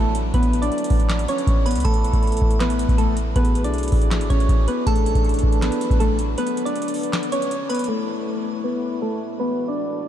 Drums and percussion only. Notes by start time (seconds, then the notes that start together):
0.15 closed hi-hat
0.34 kick, closed hi-hat
0.43 closed hi-hat
0.53 closed hi-hat
0.62 closed hi-hat
0.72 closed hi-hat
0.78 closed hi-hat
0.84 closed hi-hat
0.90 kick, open hi-hat
1.00 closed hi-hat
1.09 snare, clap, closed hi-hat
1.19 closed hi-hat
1.28 closed hi-hat
1.38 closed hi-hat
1.47 kick, closed hi-hat
1.66 closed hi-hat
1.71 closed hi-hat
1.75 closed hi-hat
1.80 closed hi-hat
1.85 kick, closed hi-hat
1.94 closed hi-hat
2.04 closed hi-hat
2.13 kick, closed hi-hat
2.23 closed hi-hat
2.27 closed hi-hat
2.32 closed hi-hat
2.37 closed hi-hat
2.41 kick
2.51 closed hi-hat
2.60 snare, clap, closed hi-hat
2.70 closed hi-hat
2.79 closed hi-hat
2.89 kick, closed hi-hat
2.98 closed hi-hat
3.17 closed hi-hat
3.36 kick, closed hi-hat
3.45 closed hi-hat
3.55 closed hi-hat
3.64 closed hi-hat
3.74 closed hi-hat
3.78 closed hi-hat
3.83 closed hi-hat
3.88 closed hi-hat
3.92 kick, open hi-hat
4.02 closed hi-hat
4.11 snare, clap, closed hi-hat
4.21 closed hi-hat
4.30 kick, closed hi-hat
4.40 closed hi-hat
4.49 kick, closed hi-hat
4.68 closed hi-hat
4.87 kick, closed hi-hat
4.96 closed hi-hat
5.06 closed hi-hat
5.15 kick, closed hi-hat
5.25 closed hi-hat
5.29 closed hi-hat
5.34 closed hi-hat
5.39 closed hi-hat
5.43 kick
5.52 closed hi-hat
5.62 snare, clap, closed hi-hat
5.72 closed hi-hat
5.81 closed hi-hat
5.91 kick, closed hi-hat
6.00 closed hi-hat
6.19 closed hi-hat
6.38 closed hi-hat
6.47 closed hi-hat
6.57 closed hi-hat
6.66 closed hi-hat
6.76 closed hi-hat
6.82 closed hi-hat
6.88 closed hi-hat
6.94 open hi-hat
7.03 closed hi-hat
7.13 snare, clap, closed hi-hat
7.23 closed hi-hat
7.32 closed hi-hat
7.42 closed hi-hat
7.51 closed hi-hat
7.70 closed hi-hat
7.75 closed hi-hat
7.79 closed hi-hat
7.84 closed hi-hat